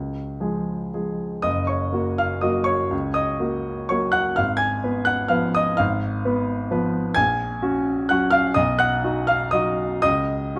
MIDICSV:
0, 0, Header, 1, 2, 480
1, 0, Start_track
1, 0, Key_signature, 6, "major"
1, 0, Tempo, 524017
1, 1334, Tempo, 491400
1, 1335, Time_signature, 3, 2, 24, 8
1, 3734, Tempo, 465839
1, 9014, Tempo, 502092
1, 10502, End_track
2, 0, Start_track
2, 0, Title_t, "Grand piano"
2, 0, Program_c, 0, 0
2, 0, Note_on_c, 0, 37, 39
2, 0, Note_on_c, 0, 73, 55
2, 104, Control_c, 0, 64, 127
2, 361, Note_off_c, 0, 37, 0
2, 370, Note_on_c, 0, 53, 30
2, 372, Note_on_c, 0, 56, 34
2, 375, Note_on_c, 0, 68, 33
2, 820, Note_off_c, 0, 53, 0
2, 822, Note_off_c, 0, 56, 0
2, 823, Note_off_c, 0, 68, 0
2, 858, Note_off_c, 0, 73, 0
2, 861, Note_on_c, 0, 53, 26
2, 862, Note_on_c, 0, 68, 33
2, 864, Note_on_c, 0, 56, 29
2, 1297, Note_off_c, 0, 53, 0
2, 1298, Note_off_c, 0, 68, 0
2, 1299, Note_off_c, 0, 56, 0
2, 1304, Note_on_c, 0, 87, 82
2, 1312, Note_on_c, 0, 75, 63
2, 1316, Note_on_c, 0, 30, 55
2, 1353, Control_c, 0, 64, 0
2, 1496, Control_c, 0, 64, 127
2, 1542, Note_off_c, 0, 75, 0
2, 1544, Note_on_c, 0, 85, 63
2, 1556, Note_off_c, 0, 87, 0
2, 1561, Note_on_c, 0, 73, 46
2, 1787, Note_off_c, 0, 30, 0
2, 1792, Note_on_c, 0, 58, 43
2, 1804, Note_on_c, 0, 66, 47
2, 2012, Note_off_c, 0, 73, 0
2, 2038, Note_off_c, 0, 85, 0
2, 2045, Note_on_c, 0, 89, 77
2, 2048, Note_on_c, 0, 77, 62
2, 2243, Note_off_c, 0, 58, 0
2, 2249, Note_off_c, 0, 66, 0
2, 2269, Note_on_c, 0, 87, 64
2, 2273, Note_off_c, 0, 77, 0
2, 2277, Note_on_c, 0, 54, 37
2, 2278, Note_on_c, 0, 75, 52
2, 2287, Note_on_c, 0, 66, 43
2, 2288, Note_off_c, 0, 89, 0
2, 2288, Note_on_c, 0, 58, 43
2, 2491, Note_on_c, 0, 85, 81
2, 2508, Note_off_c, 0, 75, 0
2, 2508, Note_on_c, 0, 73, 61
2, 2521, Note_off_c, 0, 87, 0
2, 2723, Note_off_c, 0, 54, 0
2, 2728, Note_off_c, 0, 66, 0
2, 2729, Note_off_c, 0, 58, 0
2, 2752, Note_on_c, 0, 37, 53
2, 2786, Control_c, 0, 64, 0
2, 2934, Control_c, 0, 64, 127
2, 2961, Note_off_c, 0, 73, 0
2, 2978, Note_on_c, 0, 87, 82
2, 2987, Note_off_c, 0, 85, 0
2, 2990, Note_on_c, 0, 75, 65
2, 3226, Note_off_c, 0, 37, 0
2, 3232, Note_on_c, 0, 58, 40
2, 3240, Note_on_c, 0, 66, 43
2, 3688, Note_off_c, 0, 58, 0
2, 3688, Note_off_c, 0, 75, 0
2, 3691, Note_off_c, 0, 66, 0
2, 3711, Note_on_c, 0, 85, 75
2, 3721, Note_off_c, 0, 87, 0
2, 3724, Note_on_c, 0, 73, 51
2, 3727, Note_on_c, 0, 54, 41
2, 3734, Note_on_c, 0, 66, 44
2, 3735, Note_on_c, 0, 58, 38
2, 3943, Note_on_c, 0, 90, 88
2, 3952, Note_on_c, 0, 78, 69
2, 3957, Note_off_c, 0, 73, 0
2, 3968, Note_off_c, 0, 85, 0
2, 4172, Note_off_c, 0, 54, 0
2, 4175, Note_off_c, 0, 58, 0
2, 4175, Note_off_c, 0, 66, 0
2, 4185, Note_off_c, 0, 78, 0
2, 4194, Note_on_c, 0, 89, 87
2, 4198, Note_off_c, 0, 90, 0
2, 4206, Note_on_c, 0, 77, 64
2, 4208, Note_on_c, 0, 32, 54
2, 4234, Control_c, 0, 64, 0
2, 4408, Note_on_c, 0, 92, 98
2, 4415, Control_c, 0, 64, 127
2, 4419, Note_on_c, 0, 80, 69
2, 4433, Note_off_c, 0, 77, 0
2, 4444, Note_off_c, 0, 89, 0
2, 4679, Note_off_c, 0, 32, 0
2, 4688, Note_on_c, 0, 59, 44
2, 4689, Note_on_c, 0, 71, 52
2, 4888, Note_off_c, 0, 80, 0
2, 4904, Note_on_c, 0, 90, 94
2, 4918, Note_off_c, 0, 92, 0
2, 4922, Note_on_c, 0, 78, 67
2, 5140, Note_off_c, 0, 59, 0
2, 5141, Note_off_c, 0, 71, 0
2, 5147, Note_on_c, 0, 89, 82
2, 5156, Note_on_c, 0, 77, 64
2, 5159, Note_off_c, 0, 78, 0
2, 5159, Note_on_c, 0, 53, 46
2, 5165, Note_on_c, 0, 59, 40
2, 5168, Note_off_c, 0, 90, 0
2, 5168, Note_on_c, 0, 71, 46
2, 5399, Note_off_c, 0, 77, 0
2, 5413, Note_off_c, 0, 89, 0
2, 5416, Note_on_c, 0, 87, 95
2, 5436, Note_on_c, 0, 75, 70
2, 5617, Note_off_c, 0, 53, 0
2, 5619, Note_off_c, 0, 59, 0
2, 5621, Note_off_c, 0, 71, 0
2, 5647, Note_on_c, 0, 89, 95
2, 5656, Note_off_c, 0, 75, 0
2, 5657, Note_on_c, 0, 77, 67
2, 5663, Note_off_c, 0, 87, 0
2, 5669, Note_on_c, 0, 32, 62
2, 5687, Control_c, 0, 64, 0
2, 5864, Control_c, 0, 64, 127
2, 6127, Note_off_c, 0, 32, 0
2, 6143, Note_on_c, 0, 71, 57
2, 6148, Note_on_c, 0, 59, 51
2, 6586, Note_off_c, 0, 71, 0
2, 6588, Note_off_c, 0, 59, 0
2, 6615, Note_on_c, 0, 59, 52
2, 6616, Note_on_c, 0, 53, 51
2, 6622, Note_on_c, 0, 71, 54
2, 7044, Note_off_c, 0, 77, 0
2, 7045, Note_off_c, 0, 59, 0
2, 7046, Note_off_c, 0, 53, 0
2, 7049, Note_off_c, 0, 71, 0
2, 7064, Note_on_c, 0, 92, 106
2, 7076, Note_on_c, 0, 80, 89
2, 7080, Note_off_c, 0, 89, 0
2, 7088, Note_on_c, 0, 34, 60
2, 7108, Control_c, 0, 64, 0
2, 7283, Control_c, 0, 64, 127
2, 7540, Note_off_c, 0, 34, 0
2, 7557, Note_on_c, 0, 61, 50
2, 7560, Note_on_c, 0, 66, 59
2, 7997, Note_off_c, 0, 80, 0
2, 8006, Note_off_c, 0, 61, 0
2, 8008, Note_off_c, 0, 66, 0
2, 8032, Note_off_c, 0, 92, 0
2, 8038, Note_on_c, 0, 90, 80
2, 8054, Note_on_c, 0, 78, 65
2, 8058, Note_on_c, 0, 54, 49
2, 8062, Note_on_c, 0, 61, 48
2, 8070, Note_on_c, 0, 66, 53
2, 8259, Note_on_c, 0, 89, 109
2, 8278, Note_on_c, 0, 77, 82
2, 8279, Note_off_c, 0, 78, 0
2, 8288, Note_off_c, 0, 90, 0
2, 8496, Note_off_c, 0, 54, 0
2, 8498, Note_off_c, 0, 61, 0
2, 8502, Note_off_c, 0, 66, 0
2, 8505, Note_on_c, 0, 87, 98
2, 8507, Note_off_c, 0, 77, 0
2, 8515, Note_off_c, 0, 89, 0
2, 8521, Note_on_c, 0, 35, 65
2, 8522, Note_on_c, 0, 75, 77
2, 8551, Control_c, 0, 64, 0
2, 8712, Control_c, 0, 64, 127
2, 8749, Note_off_c, 0, 75, 0
2, 8754, Note_on_c, 0, 90, 102
2, 8758, Note_off_c, 0, 87, 0
2, 8765, Note_on_c, 0, 78, 80
2, 8997, Note_off_c, 0, 35, 0
2, 9015, Note_on_c, 0, 63, 52
2, 9019, Note_on_c, 0, 66, 55
2, 9215, Note_off_c, 0, 78, 0
2, 9237, Note_on_c, 0, 89, 96
2, 9243, Note_off_c, 0, 90, 0
2, 9247, Note_on_c, 0, 77, 76
2, 9449, Note_off_c, 0, 63, 0
2, 9451, Note_off_c, 0, 66, 0
2, 9466, Note_on_c, 0, 87, 92
2, 9470, Note_off_c, 0, 77, 0
2, 9482, Note_off_c, 0, 89, 0
2, 9482, Note_on_c, 0, 75, 69
2, 9485, Note_on_c, 0, 54, 43
2, 9493, Note_on_c, 0, 63, 46
2, 9500, Note_on_c, 0, 66, 50
2, 9925, Note_off_c, 0, 54, 0
2, 9928, Note_off_c, 0, 75, 0
2, 9929, Note_off_c, 0, 63, 0
2, 9932, Note_off_c, 0, 66, 0
2, 9939, Note_off_c, 0, 87, 0
2, 9953, Note_on_c, 0, 87, 100
2, 9955, Note_on_c, 0, 75, 82
2, 9966, Note_on_c, 0, 37, 61
2, 9984, Control_c, 0, 64, 0
2, 10118, Control_c, 0, 64, 127
2, 10440, Note_off_c, 0, 37, 0
2, 10464, Note_on_c, 0, 61, 49
2, 10472, Note_on_c, 0, 66, 50
2, 10502, Note_off_c, 0, 61, 0
2, 10502, Note_off_c, 0, 66, 0
2, 10502, Note_off_c, 0, 75, 0
2, 10502, Note_off_c, 0, 87, 0
2, 10502, End_track
0, 0, End_of_file